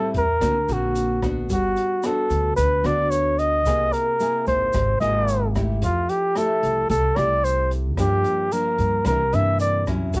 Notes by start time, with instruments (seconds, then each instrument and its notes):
Already playing: nylon-string guitar A2 G3 C4 E4, flugelhorn A4
0.14 upright bass E2, flugelhorn A#4, kick, closed hi-hat, shaker
0.41 upright bass D2, nylon-string guitar D3 A#3 C4 F#4, kick, cross-stick, closed hi-hat, shaker
0.69 upright bass A#1, nylon-string guitar A#3 C4 F#4, flugelhorn F#4, closed hi-hat, shaker
0.95 closed hi-hat, shaker
1.22 nylon-string guitar B3 D4 F#4, kick, cross-stick, closed hi-hat, shaker
1.50 upright bass G1, nylon-string guitar G3, flugelhorn F#4, kick, closed hi-hat, shaker
1.76 closed hi-hat, shaker
2.03 nylon-string guitar B3 D4 F#4, flugelhorn A4, cross-stick, closed hi-hat, shaker
2.30 upright bass D2, closed hi-hat, shaker
2.56 upright bass D2, nylon-string guitar D3, flugelhorn B4, kick, closed hi-hat, shaker
2.84 upright bass D2, nylon-string guitar B3 D4 F#4, flugelhorn D5, cross-stick, closed hi-hat, shaker
3.11 flugelhorn C#5, closed hi-hat, shaker
3.39 flugelhorn D#5, closed hi-hat, shaker
3.65 upright bass C2, nylon-string guitar C3 A#3 E4 G#4, kick, cross-stick, closed hi-hat, shaker
3.93 flugelhorn A#4, closed hi-hat, shaker
4.20 nylon-string guitar A#3 E4 G#4, closed hi-hat, shaker
4.46 upright bass G#1, flugelhorn C5, kick, closed hi-hat, shaker
4.73 upright bass G#1, nylon-string guitar C3, kick, cross-stick, closed hi-hat, shaker
5.00 upright bass G#1, nylon-string guitar A#3 E4 G#4, flugelhorn D#5, closed hi-hat, shaker
5.28 closed hi-hat, shaker
5.55 nylon-string guitar A3 E4 G4, kick, cross-stick, closed hi-hat, shaker
5.82 upright bass F2, nylon-string guitar F3, flugelhorn F4, kick, closed hi-hat, shaker
6.09 flugelhorn G4, closed hi-hat, shaker
6.35 nylon-string guitar A3 E4 G4, flugelhorn A4, cross-stick, closed hi-hat, shaker
6.63 upright bass C2, closed hi-hat, shaker
6.90 upright bass C2, nylon-string guitar C3, flugelhorn A4, kick, closed hi-hat, shaker
7.16 upright bass C2, nylon-string guitar A3 E4 G4, flugelhorn D5, cross-stick, closed hi-hat, shaker
7.44 flugelhorn C5, closed hi-hat, shaker
7.71 closed hi-hat, shaker
7.97 upright bass G2, nylon-string guitar G2 F3 A#3 D4, flugelhorn G4, kick, cross-stick, closed hi-hat, shaker
8.24 closed hi-hat, shaker
8.52 nylon-string guitar F3 A#3 D4, flugelhorn A#4, closed hi-hat, shaker
8.78 upright bass G2, kick, closed hi-hat, shaker
9.05 upright bass C2, nylon-string guitar C3 E3 A#3 D4, flugelhorn A#4, kick, cross-stick, closed hi-hat, shaker
9.33 upright bass G2, nylon-string guitar E3 A#3 D4, flugelhorn E5, closed hi-hat, shaker
9.60 flugelhorn D5, closed hi-hat, shaker
9.87 nylon-string guitar F#3 C#4 E4, kick, cross-stick, closed hi-hat, shaker
10.13 upright bass D2, nylon-string guitar D3, flugelhorn F#4, kick, closed hi-hat, shaker